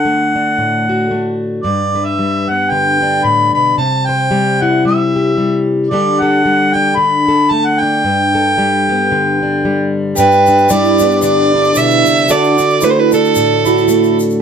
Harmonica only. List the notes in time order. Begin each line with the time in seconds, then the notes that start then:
Already playing: F#5
1.63 D5
2.06 E5
2.49 F#5
2.70 G5
3.24 B5
3.54 B5
3.78 A5
4.06 G5
4.62 F#5
4.86 E5
5.90 D5
6.20 F#5
6.74 G5
6.96 B5
7.51 A5
7.65 F#5
7.79 G5